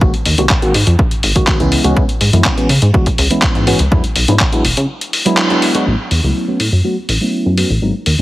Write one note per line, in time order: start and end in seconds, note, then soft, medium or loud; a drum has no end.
0.01 0.11 G#1 medium
0.01 0.11 D#3 medium
0.01 0.11 G#3 medium
0.01 0.11 A#3 medium
0.01 0.11 C4 medium
0.01 0.12 F#4 loud
0.01 kick loud
0.14 closed hi-hat soft
0.25 0.35 D#2 medium
0.25 open hi-hat medium
0.38 0.47 C2 medium
0.38 0.44 D#3 medium
0.38 0.44 G#3 medium
0.38 0.44 A#3 medium
0.38 0.44 C4 medium
0.38 0.45 F#4 loud
0.38 closed hi-hat medium
0.49 kick loud
0.49 clap loud
0.62 0.72 D#3 loud
0.62 0.72 G#3 medium
0.62 0.72 A#3 medium
0.62 0.72 C4 medium
0.62 0.72 F#4 loud
0.62 closed hi-hat medium
0.74 0.84 G#2 medium
0.74 open hi-hat loud
0.87 0.96 F2 medium
0.87 closed hi-hat medium
0.99 kick loud
1.11 1.21 G#1 soft
1.11 closed hi-hat soft
1.23 1.33 G#1 loud
1.23 open hi-hat medium
1.35 1.57 D#3 medium
1.35 1.57 G#3 medium
1.35 1.57 A#3 medium
1.35 1.57 C4 medium
1.35 1.57 F#4 loud
1.35 kick medium
1.35 closed hi-hat medium
1.47 kick loud
1.47 clap loud
1.60 1.78 C#2 medium
1.60 1.81 E3 medium
1.60 1.81 G#3 medium
1.60 1.82 B3 medium
1.60 1.82 C#4 medium
1.60 1.82 E4 medium
1.60 closed hi-hat soft
1.72 open hi-hat medium
1.84 1.93 C#2 loud
1.84 1.94 E3 loud
1.84 1.94 G#3 medium
1.84 1.94 B3 medium
1.84 1.94 C#4 medium
1.84 1.94 F#4 loud
1.84 closed hi-hat medium
1.96 2.06 C#2 loud
1.96 2.03 E3 medium
1.96 2.03 G#3 medium
1.96 2.03 B3 medium
1.96 2.03 C#4 medium
1.96 2.03 E4 loud
1.96 kick loud
2.09 closed hi-hat soft
2.21 2.30 G#2 medium
2.21 open hi-hat loud
2.33 2.42 F#2 loud
2.33 2.54 E3 medium
2.33 2.54 G#3 medium
2.33 2.55 B3 medium
2.33 2.55 C#4 medium
2.33 2.55 E4 medium
2.33 closed hi-hat medium
2.44 kick loud
2.44 clap loud
2.57 2.67 E3 medium
2.57 2.67 G#3 medium
2.57 2.67 B3 medium
2.57 2.67 C#4 medium
2.57 2.68 F#4 medium
2.57 closed hi-hat medium
2.69 2.79 C#3 medium
2.69 open hi-hat loud
2.82 2.91 G#2 medium
2.82 closed hi-hat medium
2.93 3.04 E3 medium
2.93 3.04 G#3 medium
2.93 3.04 B3 medium
2.93 3.04 C#4 medium
2.93 3.04 F#4 medium
2.93 kick loud
3.06 kick medium
3.06 closed hi-hat medium
3.18 3.28 C#2 loud
3.18 open hi-hat loud
3.30 3.64 E3 medium
3.30 3.64 G#3 medium
3.30 3.64 B3 medium
3.30 3.64 C#4 medium
3.30 3.64 E4 medium
3.30 closed hi-hat medium
3.42 kick loud
3.42 clap loud
3.55 3.73 G#2 medium
3.55 closed hi-hat soft
3.67 3.77 E3 medium
3.67 3.77 G#3 medium
3.67 3.77 B3 medium
3.67 3.77 C#4 medium
3.67 3.77 F#4 loud
3.67 open hi-hat loud
3.79 3.89 C#2 loud
3.79 closed hi-hat medium
3.91 4.01 E2 loud
3.91 4.01 F#3 medium
3.91 4.02 G#3 medium
3.91 4.02 B3 medium
3.91 4.02 D4 medium
3.91 4.02 E4 loud
3.91 kick loud
4.04 closed hi-hat soft
4.16 4.25 B1 medium
4.16 open hi-hat loud
4.28 4.37 G#2 loud
4.28 4.34 F#3 medium
4.28 4.34 G#3 medium
4.28 4.35 B3 medium
4.28 4.35 D4 medium
4.28 4.35 E4 medium
4.28 closed hi-hat medium
4.40 kick loud
4.40 clap loud
4.52 4.62 F#3 loud
4.52 4.62 G#3 medium
4.52 4.63 B3 medium
4.52 4.63 D4 medium
4.52 4.63 E4 loud
4.52 closed hi-hat medium
4.65 4.74 E1 medium
4.65 open hi-hat loud
4.77 4.86 C#3 medium
4.77 closed hi-hat medium
5.01 closed hi-hat medium
5.13 open hi-hat loud
5.25 5.47 F#3 loud
5.25 5.47 G#3 medium
5.25 5.47 B3 medium
5.25 5.48 D4 medium
5.25 5.48 E4 loud
5.25 closed hi-hat medium
5.37 clap loud
5.50 5.72 F#3 medium
5.50 5.72 G#3 medium
5.50 5.72 B3 medium
5.50 5.72 D4 medium
5.50 5.72 E4 loud
5.50 closed hi-hat soft
5.62 open hi-hat loud
5.74 5.84 F#3 loud
5.74 5.84 G#3 medium
5.74 5.85 B3 medium
5.74 5.85 D4 medium
5.74 5.85 F#4 loud
5.74 closed hi-hat medium
5.86 5.96 A1 medium
5.86 5.93 F#3 medium
5.86 5.93 A3 medium
5.86 5.93 B3 medium
5.86 5.93 C#4 medium
5.86 5.93 E4 medium
6.11 6.20 E2 medium
6.11 open hi-hat medium
6.23 6.33 C#2 loud
6.23 6.45 F#3 medium
6.23 6.45 A3 medium
6.23 6.45 B3 medium
6.23 6.45 C#4 medium
6.23 6.45 E4 medium
6.47 6.57 F#3 medium
6.47 6.58 A3 medium
6.47 6.58 B3 medium
6.47 6.58 C#4 medium
6.47 6.58 F#4 medium
6.60 6.69 A2 medium
6.60 open hi-hat medium
6.72 6.81 F#2 medium
6.84 6.94 F#3 medium
6.84 6.94 A3 medium
6.84 6.94 B3 medium
6.84 6.95 C#4 medium
6.84 6.95 F#4 medium
7.09 7.18 A1 medium
7.09 open hi-hat medium
7.21 7.55 F#3 medium
7.21 7.55 A3 medium
7.21 7.55 B3 medium
7.21 7.55 C#4 medium
7.21 7.55 E4 medium
7.46 7.64 F#2 medium
7.57 7.67 F#3 medium
7.57 7.68 A3 medium
7.57 7.68 B3 medium
7.57 7.68 C#4 medium
7.57 7.68 F#4 medium
7.57 open hi-hat medium
7.70 7.79 A1 medium
7.82 7.91 G#1 medium
7.82 7.92 F#3 medium
7.82 7.92 G#3 medium
7.82 7.92 A#3 medium
7.82 7.92 C4 medium
7.82 7.92 D#4 medium
8.06 8.16 D#2 medium
8.06 open hi-hat loud
8.19 8.22 F#3 medium